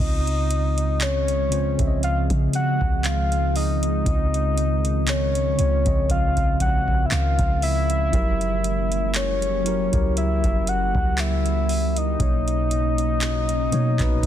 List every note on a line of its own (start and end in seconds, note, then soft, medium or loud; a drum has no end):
0.00 1.76 C#2 loud
0.00 1.16 C#3 medium
0.00 14.26 C#3 medium
0.00 8.09 D#3 medium
0.00 8.09 F3 medium
0.00 8.09 G#3 medium
0.00 1.17 C4 medium
0.00 1.18 F4 medium
0.00 4.02 G#4 medium
0.00 1.04 D#5 loud
0.00 1.18 D#5 medium
0.27 closed hi-hat medium
0.51 closed hi-hat medium
0.78 closed hi-hat medium
1.01 2.03 C#5 loud
1.01 clap loud
1.01 closed hi-hat medium
1.28 closed hi-hat medium
1.50 1.72 C#3 medium
1.50 1.73 C4 medium
1.50 1.73 F4 medium
1.50 1.74 C5 medium
1.50 closed hi-hat medium
1.77 2.28 C#2 loud
1.77 3.34 C#3 medium
1.77 3.35 F3 medium
1.77 3.35 C4 medium
1.77 1.86 E5 medium
1.77 kick medium
1.77 closed hi-hat soft
1.87 3.39 D#5 medium
2.03 2.18 F5 loud
2.03 closed hi-hat medium
2.30 2.79 C#3 loud
2.30 kick medium
2.30 closed hi-hat soft
2.53 2.99 F#5 loud
2.53 closed hi-hat medium
2.81 4.02 C#2 loud
2.81 kick medium
2.99 3.07 F#5 medium
3.04 3.56 F5 loud
3.04 clap loud
3.04 closed hi-hat medium
3.32 closed hi-hat medium
3.56 5.11 D#5 loud
3.56 open hi-hat medium
3.83 closed hi-hat medium
4.04 5.55 C#2 loud
4.04 5.23 C#3 medium
4.04 5.24 C4 medium
4.04 5.24 F4 medium
4.04 8.09 A#4 medium
4.04 5.25 D#5 medium
4.04 kick loud
4.04 closed hi-hat medium
4.34 closed hi-hat medium
4.57 closed hi-hat medium
4.85 closed hi-hat medium
5.07 6.10 C#5 loud
5.07 clap loud
5.07 closed hi-hat medium
5.35 closed hi-hat medium
5.57 5.85 C#2 loud
5.57 5.79 C#3 medium
5.57 5.79 C4 medium
5.57 5.80 F4 medium
5.57 5.80 C#5 medium
5.57 closed hi-hat medium
5.84 7.07 C#2 loud
5.84 7.41 C#3 medium
5.84 7.42 F3 medium
5.84 7.41 C4 medium
5.84 7.42 D#5 medium
5.84 kick medium
5.84 closed hi-hat medium
6.09 6.58 F5 loud
6.09 kick medium
6.09 closed hi-hat medium
6.37 kick loud
6.37 closed hi-hat soft
6.60 7.07 F#5 loud
6.60 kick loud
6.60 closed hi-hat medium
6.88 kick medium
7.06 7.14 E5 medium
7.11 7.38 C#2 loud
7.11 7.63 F5 loud
7.11 clap loud
7.11 closed hi-hat medium
7.39 8.10 C#2 loud
7.39 kick medium
7.39 closed hi-hat medium
7.62 9.11 E5 loud
7.62 open hi-hat medium
7.90 closed hi-hat medium
8.11 9.89 F#1 loud
8.11 9.30 F#3 medium
8.11 12.16 F#3 medium
8.11 12.16 A#3 medium
8.11 9.31 E4 medium
8.11 12.16 E4 medium
8.11 12.16 G4 medium
8.11 9.31 G4 medium
8.11 9.32 A#4 medium
8.11 kick loud
8.11 closed hi-hat medium
8.41 closed hi-hat medium
8.64 closed hi-hat medium
8.92 closed hi-hat soft
9.14 10.13 C#5 loud
9.14 clap loud
9.14 closed hi-hat medium
9.42 closed hi-hat medium
9.64 9.86 F#3 medium
9.64 9.86 E4 medium
9.64 9.87 G4 medium
9.64 9.87 A#4 medium
9.64 closed hi-hat medium
9.91 10.42 C#2 loud
9.91 11.48 F#3 medium
9.91 11.48 E4 medium
9.91 11.49 G4 medium
9.91 11.49 A#4 medium
9.91 kick medium
9.91 closed hi-hat medium
10.17 10.70 E5 loud
10.17 closed hi-hat medium
10.44 10.93 F#1 loud
10.44 kick medium
10.44 closed hi-hat soft
10.67 11.21 F#5 loud
10.67 closed hi-hat medium
10.95 12.16 C#2 loud
10.95 kick medium
11.18 11.99 E5 loud
11.18 clap loud
11.18 closed hi-hat medium
11.46 closed hi-hat soft
11.69 open hi-hat medium
11.96 14.26 D#5 loud
11.96 closed hi-hat medium
12.18 13.69 B1 loud
12.18 13.37 B2 medium
12.18 14.26 F#3 medium
12.18 13.38 A#3 medium
12.18 14.26 C#4 medium
12.18 14.26 D#4 medium
12.18 13.38 D#4 medium
12.18 14.26 F#4 medium
12.18 13.39 C#5 medium
12.18 kick loud
12.18 closed hi-hat medium
12.48 closed hi-hat medium
12.71 closed hi-hat medium
12.98 closed hi-hat soft
13.21 clap loud
13.21 closed hi-hat medium
13.49 closed hi-hat medium
13.71 13.92 B2 medium
13.71 13.99 B2 loud
13.71 13.93 A#3 medium
13.71 13.94 D#4 medium
13.71 13.94 C#5 medium
13.71 closed hi-hat medium
13.98 14.26 B1 loud
13.98 14.26 A#2 medium
13.98 14.26 B2 medium
13.98 14.26 D#4 medium
13.98 14.26 B4 loud
13.98 kick medium
13.98 clap medium
13.98 closed hi-hat soft
14.23 kick medium
14.23 closed hi-hat medium